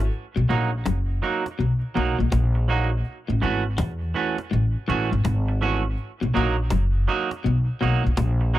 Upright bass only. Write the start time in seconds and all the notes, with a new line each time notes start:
0.37 B1
0.50 A#1
0.86 F#1
1.60 B1
1.97 B1
2.20 A#1
2.33 A#1
3.30 A1
3.43 G#1
3.79 E2
4.53 A1
4.90 A1
5.13 G#1
5.26 G#1
6.23 B1
6.36 A#1
6.72 F#1
7.46 B1
7.82 B1
8.06 A#1
8.18 A#1